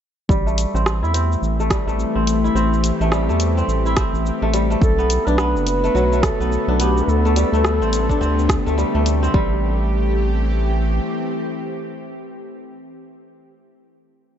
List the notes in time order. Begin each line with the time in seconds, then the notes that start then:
0.29 A1 E3 G3 A3 C4 G4, kick, shaker
0.46 A3, shaker
0.58 closed hi-hat, shaker
0.74 A1 C4, shaker
0.86 cross-stick, shaker
1.02 E2 E4, shaker
1.14 C4, closed hi-hat, shaker
1.32 shaker
1.42 A1, shaker
1.60 A3, shaker
1.70 G3, kick, cross-stick, closed hi-hat, shaker
1.87 A1 A3, shaker
2.00 shaker
2.15 A1 C4
2.27 closed hi-hat, shaker
2.44 E4, shaker
2.55 A1 C4, shaker
2.73 shaker
2.84 closed hi-hat, shaker
3.00 A1 A3, shaker
3.12 G3, cross-stick, shaker
3.29 E2 A3, shaker
3.40 closed hi-hat, shaker
3.57 C4, shaker
3.68 A1, shaker
3.86 E4, shaker
3.97 C4, kick, cross-stick, closed hi-hat, shaker
4.13 A1, shaker
4.26 shaker
4.42 A1 A3
4.53 G3, closed hi-hat, shaker
4.70 A3, shaker
4.82 B1 D3 A3 B3 F#4 A4 B4, kick, shaker
4.98 B3, shaker
5.10 closed hi-hat, shaker
5.27 B1 D4 B4, shaker
5.38 B3, cross-stick, shaker
5.55 F#1, shaker
5.67 B4, closed hi-hat, shaker
5.84 A3, shaker
5.95 B1 F#3, shaker
6.12 A3, shaker
6.23 A4, kick, cross-stick, closed hi-hat, shaker
6.40 B1 B3, shaker
6.52 shaker
6.68 B1 D4
6.80 B3 G4, closed hi-hat, shaker
6.98 shaker
7.03 B4
7.07 D2 C3 A3 G4 A4, shaker
7.25 A3, shaker
7.36 G3, closed hi-hat, shaker
7.53 D2 A3, shaker
7.65 cross-stick, shaker
7.81 A1 C4, shaker
7.93 closed hi-hat, shaker
8.09 D4, kick, shaker
8.21 D2 C4, shaker
8.39 shaker
8.49 kick, cross-stick, closed hi-hat, shaker
8.66 D2 A3, shaker
8.78 G3, shaker
8.95 D2 A3
9.06 closed hi-hat, shaker
9.23 C4, shaker
9.34 A1 E3 G3 A3 C4 G4, kick